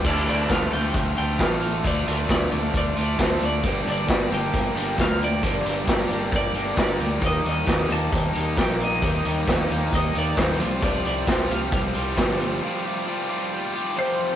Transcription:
<<
  \new Staff \with { instrumentName = "Clean electric guitar" } { \time 4/4 \key d \phrygian \tempo 4 = 134 d''8 d''8 f''8 g''4 g''8 f''4 | d''4 d''4 d''8 d''8 c''8 d''8~ | d''8 d''4 g''4. f''8 d''8~ | d''2 d''4 d''4 |
ees''8 ees''4 a''4. g''8 ees''8~ | ees''2 ees''8 d''8 c''4 | d''8 d''8 c''8 f''2~ f''8~ | f''2. c''4 | }
  \new Staff \with { instrumentName = "Overdriven electric guitar" } { \time 4/4 \key d \phrygian <d a d' f'>8 <a d' f'>8 <d a d' f'>8 <a d' f'>4 <a d' f'>8 <d a d' f'>4 | <d a d' f'>8 <a d' f'>8 <d a d' f'>8 <a d' f'>4 <a d' f'>8 <d a d' f'>4 | <g, d g bes d' g'>8 <g bes d' g'>8 <g bes d' g'>8 <g bes d' g'>4 <g bes d' g'>8 <g, d g bes d' g'>4 | <g, d g bes d' g'>8 <g bes d' g'>8 <g bes d' g'>8 <g bes d' g'>4 <g bes d' g'>8 <g, d g bes d' g'>4 |
<ees g bes ees' g'>8 <bes ees' g'>8 <g bes ees' g'>8 <bes ees' g'>4 <bes ees' g'>8 <ees g bes ees' g'>4 | <ees g bes ees' g'>8 <bes ees' g'>8 <g bes ees' g'>8 <bes ees' g'>4 <bes ees' g'>8 <ees g bes ees' g'>8 <c f g f' g'>8 | <c f g f' g'>8 <g f' g'>8 <f g f' g'>8 <g f' g'>4 <g f' g'>8 <c f g f' g'>4 | <c f g f' g'>8 <g f' g'>8 <f g f' g'>8 <g f' g'>4 <g f' g'>8 <c f g f' g'>4 | }
  \new Staff \with { instrumentName = "Fingered electric bass" } { \clef bass \time 4/4 \key d \phrygian d,8 d,8 d,8 d,8 d,8 d,8 a,,4 | d,8 d,8 d,8 d,8 d,8 d,8 d,8 d,8 | g,,8 g,,8 g,,8 g,,8 g,,8 g,,8 d,4 | g,,8 g,,8 g,,8 g,,8 g,,8 g,,8 g,,8 d,8 |
ees,8 ees,8 ees,8 ees,8 ees,8 ees,8 bes,,4 | ees,8 ees,8 ees,8 ees,8 ees,8 ees,8 r8 c,8 | c,8 c,8 c,8 c,8 c,8 c,8 g,,4 | r1 | }
  \new DrumStaff \with { instrumentName = "Drums" } \drummode { \time 4/4 <cymc bd>8 hh8 <hh bd sn>8 hh8 <hh bd>8 hh8 <hh bd sn>8 hh8 | <hh bd>8 hh8 <hh bd sn>8 hh8 <hh bd>8 hh8 <hh bd sn>8 hh8 | <hh bd>8 hh8 <hh bd sn>8 hh8 <hh bd>8 hh8 <hh bd sn>8 hh8 | <hh bd>8 hh8 <hh bd sn>8 hh8 <hh bd>8 hh8 <hh bd sn>8 hh8 |
<hh bd>8 hh8 <hh bd sn>8 hh8 <hh bd>8 hh8 <hh bd sn>16 sn16 hh8 | <hh bd>8 hh8 <hh bd sn>8 hh8 <hh bd>8 hh8 <hh bd sn>16 sn16 hh8 | <hh bd>8 hh8 <hh bd sn>8 hh8 <hh bd>8 hh8 <hh bd sn>16 sn16 hh8 | r4 r4 r4 r4 | }
>>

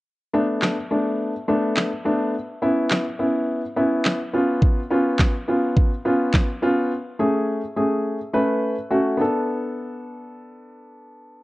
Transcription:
<<
  \new Staff \with { instrumentName = "Grand piano" } { \time 4/4 \key b \dorian \tempo 4 = 105 r8 <a b d'>8 r8 <a b d'>8 r8 <a b d'>8 r8 <a b d'>8 | r8 <b cis' e'>8 r8 <b cis' e'>8 r8 <b cis' e'>8 r8 <b cis' eis'>8~ | <b cis' eis'>8 <b cis' eis'>8 r8 <b cis' eis'>8 r8 <b cis' eis'>8 r8 <b cis' eis'>8 | r8 <a cis' gis'>8 r8 <a cis' gis'>8 r8 <a cis' b'>8 r8 <a cis' fis'>8 |
<b d' a'>1 | }
  \new DrumStaff \with { instrumentName = "Drums" } \drummode { \time 4/4 r4 <hc sn>4 r4 <hc sn>4 | r4 <hc sn>4 r4 <hc sn>4 | bd4 <hc bd sn>4 bd4 <hc bd sn>4 | r4 r4 r4 r4 |
r4 r4 r4 r4 | }
>>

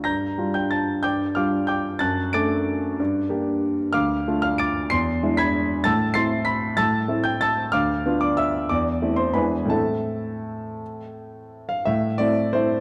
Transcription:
\new Staff \with { instrumentName = "Grand piano" } { \time 3/4 \key g \dorian \tempo 4 = 184 << { <bes'' g''' bes'''>4. <g'' g'''>8 <a'' a'''>4 | <g'' d''' g'''>4 <f'' d''' f'''>4 <g'' d''' g'''>4 | <a'' fis''' a'''>4 <d''' a''' d''''>2~ | <d''' a''' d''''>2~ <d''' a''' d''''>8 r8 |
\key a \minor <f'' d''' f'''>4. <f'' f'''>8 <d''' a''' d''''>4 | <c''' c''''>4. <b'' gis''' b'''>4. | <a'' e''' a'''>4 <c''' a''' c''''>4 <b'' b'''>4 | <a'' e''' a'''>4. <g'' g'''>8 <a'' e''' a'''>4 |
<f'' d''' f'''>4. <d'' d'''>8 <e'' e'''>4 | <d'' d'''>4. <c'' c'''>8 <b' gis'' b''>4 | <a' e'' a''>2.~ | <a' e'' a''>2~ <a' e'' a''>8 f''8 |
e''4 d''4 c''4 | } \\ { g,4 <g d' f'>2 | g,4 <g d' f'>2 | fis,4 <a d' a'>2 | g,4 <bes d' g'>2 |
d,4 <a d' f'>2 | e,4 <gis d' e'>2 | a,4 <a c' e'>2 | a,4 <a c' e'>2 |
d,4 <b d' f'>2 | e,4 <a c' e'>4 <e, gis d' e'>4 | <a, a c' e'>2.~ | <a, a c' e'>2. |
a,4 <a c' e'>4 <a c' e'>4 | } >> }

